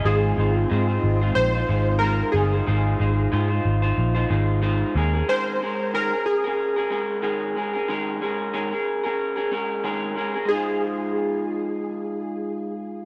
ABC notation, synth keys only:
X:1
M:4/4
L:1/8
Q:"Swing 16ths" 1/4=92
K:Ab
V:1 name="Synth keys"
A4 c2 B A- | A2 z6 | c2 B A4- A- | A6 z2 |
A8 |]